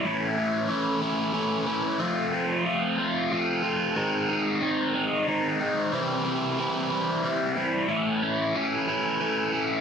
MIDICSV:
0, 0, Header, 1, 2, 480
1, 0, Start_track
1, 0, Tempo, 653595
1, 34, Time_signature, 6, 3, 24, 8
1, 7203, End_track
2, 0, Start_track
2, 0, Title_t, "Overdriven electric guitar"
2, 0, Program_c, 0, 29
2, 28, Note_on_c, 0, 45, 102
2, 39, Note_on_c, 0, 52, 110
2, 42, Note_on_c, 0, 57, 104
2, 45, Note_on_c, 0, 61, 119
2, 47, Note_on_c, 0, 64, 119
2, 261, Note_off_c, 0, 64, 0
2, 267, Note_off_c, 0, 61, 0
2, 270, Note_on_c, 0, 64, 73
2, 276, Note_on_c, 0, 61, 78
2, 279, Note_off_c, 0, 57, 0
2, 282, Note_on_c, 0, 57, 68
2, 493, Note_off_c, 0, 52, 0
2, 501, Note_off_c, 0, 57, 0
2, 502, Note_on_c, 0, 52, 82
2, 504, Note_off_c, 0, 61, 0
2, 504, Note_on_c, 0, 57, 77
2, 508, Note_off_c, 0, 64, 0
2, 511, Note_off_c, 0, 45, 0
2, 513, Note_on_c, 0, 61, 89
2, 516, Note_on_c, 0, 64, 87
2, 736, Note_off_c, 0, 64, 0
2, 740, Note_off_c, 0, 61, 0
2, 745, Note_off_c, 0, 57, 0
2, 745, Note_on_c, 0, 64, 82
2, 749, Note_on_c, 0, 61, 70
2, 754, Note_on_c, 0, 57, 66
2, 966, Note_off_c, 0, 52, 0
2, 972, Note_off_c, 0, 57, 0
2, 975, Note_off_c, 0, 64, 0
2, 975, Note_on_c, 0, 52, 68
2, 977, Note_off_c, 0, 61, 0
2, 981, Note_on_c, 0, 57, 82
2, 984, Note_on_c, 0, 64, 80
2, 986, Note_on_c, 0, 61, 86
2, 1215, Note_off_c, 0, 64, 0
2, 1223, Note_off_c, 0, 57, 0
2, 1224, Note_on_c, 0, 64, 73
2, 1225, Note_off_c, 0, 61, 0
2, 1232, Note_on_c, 0, 57, 63
2, 1233, Note_on_c, 0, 61, 66
2, 1449, Note_off_c, 0, 52, 0
2, 1454, Note_off_c, 0, 64, 0
2, 1458, Note_off_c, 0, 57, 0
2, 1459, Note_off_c, 0, 61, 0
2, 1467, Note_on_c, 0, 53, 104
2, 1467, Note_on_c, 0, 57, 103
2, 1473, Note_on_c, 0, 60, 114
2, 1477, Note_on_c, 0, 65, 115
2, 1701, Note_off_c, 0, 65, 0
2, 1710, Note_on_c, 0, 65, 76
2, 1711, Note_off_c, 0, 60, 0
2, 1713, Note_off_c, 0, 57, 0
2, 1714, Note_on_c, 0, 60, 71
2, 1722, Note_on_c, 0, 57, 69
2, 1940, Note_off_c, 0, 53, 0
2, 1948, Note_off_c, 0, 57, 0
2, 1949, Note_on_c, 0, 53, 82
2, 1953, Note_off_c, 0, 65, 0
2, 1957, Note_on_c, 0, 57, 83
2, 1958, Note_off_c, 0, 60, 0
2, 1961, Note_on_c, 0, 60, 79
2, 1962, Note_on_c, 0, 65, 81
2, 2179, Note_off_c, 0, 65, 0
2, 2188, Note_on_c, 0, 65, 79
2, 2191, Note_off_c, 0, 60, 0
2, 2193, Note_off_c, 0, 57, 0
2, 2194, Note_on_c, 0, 60, 70
2, 2202, Note_on_c, 0, 57, 59
2, 2426, Note_off_c, 0, 53, 0
2, 2431, Note_off_c, 0, 57, 0
2, 2435, Note_on_c, 0, 53, 71
2, 2438, Note_off_c, 0, 60, 0
2, 2439, Note_off_c, 0, 65, 0
2, 2440, Note_on_c, 0, 57, 71
2, 2441, Note_on_c, 0, 60, 83
2, 2447, Note_on_c, 0, 65, 82
2, 2655, Note_off_c, 0, 65, 0
2, 2663, Note_on_c, 0, 65, 76
2, 2665, Note_off_c, 0, 60, 0
2, 2666, Note_off_c, 0, 57, 0
2, 2668, Note_on_c, 0, 60, 63
2, 2675, Note_on_c, 0, 57, 63
2, 2893, Note_off_c, 0, 65, 0
2, 2898, Note_off_c, 0, 53, 0
2, 2899, Note_off_c, 0, 57, 0
2, 2906, Note_on_c, 0, 44, 100
2, 2910, Note_on_c, 0, 51, 99
2, 2912, Note_off_c, 0, 60, 0
2, 2912, Note_on_c, 0, 56, 105
2, 2915, Note_on_c, 0, 60, 106
2, 2917, Note_on_c, 0, 63, 104
2, 3141, Note_off_c, 0, 63, 0
2, 3150, Note_on_c, 0, 63, 80
2, 3156, Note_off_c, 0, 60, 0
2, 3159, Note_on_c, 0, 60, 71
2, 3160, Note_off_c, 0, 56, 0
2, 3168, Note_on_c, 0, 56, 63
2, 3379, Note_off_c, 0, 51, 0
2, 3382, Note_off_c, 0, 56, 0
2, 3388, Note_off_c, 0, 44, 0
2, 3388, Note_on_c, 0, 51, 80
2, 3390, Note_on_c, 0, 56, 80
2, 3392, Note_off_c, 0, 60, 0
2, 3395, Note_off_c, 0, 63, 0
2, 3395, Note_on_c, 0, 60, 80
2, 3404, Note_on_c, 0, 63, 92
2, 3618, Note_off_c, 0, 63, 0
2, 3626, Note_off_c, 0, 60, 0
2, 3627, Note_on_c, 0, 63, 80
2, 3629, Note_off_c, 0, 56, 0
2, 3634, Note_on_c, 0, 60, 65
2, 3638, Note_on_c, 0, 56, 64
2, 3862, Note_off_c, 0, 51, 0
2, 3867, Note_off_c, 0, 56, 0
2, 3870, Note_on_c, 0, 51, 70
2, 3873, Note_off_c, 0, 63, 0
2, 3876, Note_off_c, 0, 60, 0
2, 3876, Note_on_c, 0, 56, 70
2, 3882, Note_on_c, 0, 63, 86
2, 3885, Note_on_c, 0, 60, 73
2, 4104, Note_off_c, 0, 63, 0
2, 4109, Note_off_c, 0, 60, 0
2, 4113, Note_on_c, 0, 63, 78
2, 4116, Note_off_c, 0, 56, 0
2, 4118, Note_on_c, 0, 60, 74
2, 4124, Note_on_c, 0, 56, 68
2, 4336, Note_off_c, 0, 51, 0
2, 4337, Note_off_c, 0, 63, 0
2, 4339, Note_off_c, 0, 60, 0
2, 4343, Note_off_c, 0, 56, 0
2, 4348, Note_on_c, 0, 48, 88
2, 4353, Note_on_c, 0, 52, 100
2, 4353, Note_on_c, 0, 55, 101
2, 4354, Note_on_c, 0, 60, 105
2, 4364, Note_on_c, 0, 64, 105
2, 4584, Note_off_c, 0, 64, 0
2, 4585, Note_off_c, 0, 60, 0
2, 4587, Note_on_c, 0, 64, 78
2, 4594, Note_off_c, 0, 55, 0
2, 4594, Note_on_c, 0, 60, 71
2, 4603, Note_on_c, 0, 55, 61
2, 4829, Note_off_c, 0, 48, 0
2, 4831, Note_off_c, 0, 52, 0
2, 4831, Note_off_c, 0, 55, 0
2, 4834, Note_on_c, 0, 52, 84
2, 4835, Note_off_c, 0, 60, 0
2, 4840, Note_on_c, 0, 55, 81
2, 4844, Note_on_c, 0, 60, 86
2, 4845, Note_off_c, 0, 64, 0
2, 4848, Note_on_c, 0, 64, 92
2, 5061, Note_off_c, 0, 64, 0
2, 5070, Note_on_c, 0, 64, 80
2, 5074, Note_off_c, 0, 60, 0
2, 5076, Note_off_c, 0, 55, 0
2, 5083, Note_on_c, 0, 60, 66
2, 5085, Note_on_c, 0, 55, 58
2, 5308, Note_off_c, 0, 52, 0
2, 5314, Note_off_c, 0, 55, 0
2, 5314, Note_off_c, 0, 60, 0
2, 5317, Note_on_c, 0, 52, 71
2, 5321, Note_off_c, 0, 64, 0
2, 5323, Note_on_c, 0, 55, 72
2, 5323, Note_on_c, 0, 60, 84
2, 5329, Note_on_c, 0, 64, 77
2, 5543, Note_off_c, 0, 64, 0
2, 5552, Note_off_c, 0, 60, 0
2, 5552, Note_on_c, 0, 64, 74
2, 5558, Note_off_c, 0, 55, 0
2, 5561, Note_on_c, 0, 60, 72
2, 5567, Note_on_c, 0, 55, 66
2, 5776, Note_off_c, 0, 64, 0
2, 5779, Note_off_c, 0, 52, 0
2, 5781, Note_off_c, 0, 60, 0
2, 5784, Note_off_c, 0, 55, 0
2, 5788, Note_on_c, 0, 45, 100
2, 5796, Note_on_c, 0, 52, 107
2, 5797, Note_on_c, 0, 57, 109
2, 5800, Note_on_c, 0, 61, 110
2, 5802, Note_on_c, 0, 64, 102
2, 6028, Note_off_c, 0, 64, 0
2, 6032, Note_off_c, 0, 61, 0
2, 6036, Note_on_c, 0, 64, 83
2, 6038, Note_off_c, 0, 57, 0
2, 6041, Note_on_c, 0, 61, 78
2, 6047, Note_on_c, 0, 57, 64
2, 6269, Note_off_c, 0, 45, 0
2, 6269, Note_off_c, 0, 52, 0
2, 6277, Note_off_c, 0, 57, 0
2, 6278, Note_on_c, 0, 52, 86
2, 6282, Note_off_c, 0, 61, 0
2, 6284, Note_off_c, 0, 64, 0
2, 6286, Note_on_c, 0, 57, 84
2, 6291, Note_on_c, 0, 61, 86
2, 6293, Note_on_c, 0, 64, 84
2, 6511, Note_off_c, 0, 64, 0
2, 6519, Note_off_c, 0, 61, 0
2, 6520, Note_on_c, 0, 64, 78
2, 6521, Note_off_c, 0, 57, 0
2, 6528, Note_on_c, 0, 61, 67
2, 6530, Note_on_c, 0, 57, 59
2, 6745, Note_off_c, 0, 52, 0
2, 6750, Note_off_c, 0, 57, 0
2, 6753, Note_on_c, 0, 52, 70
2, 6755, Note_off_c, 0, 61, 0
2, 6759, Note_off_c, 0, 64, 0
2, 6759, Note_on_c, 0, 57, 70
2, 6764, Note_on_c, 0, 61, 73
2, 6768, Note_on_c, 0, 64, 75
2, 6982, Note_off_c, 0, 64, 0
2, 6991, Note_on_c, 0, 64, 76
2, 6993, Note_off_c, 0, 61, 0
2, 6997, Note_off_c, 0, 57, 0
2, 7001, Note_on_c, 0, 61, 72
2, 7006, Note_on_c, 0, 57, 62
2, 7203, Note_off_c, 0, 52, 0
2, 7203, Note_off_c, 0, 57, 0
2, 7203, Note_off_c, 0, 61, 0
2, 7203, Note_off_c, 0, 64, 0
2, 7203, End_track
0, 0, End_of_file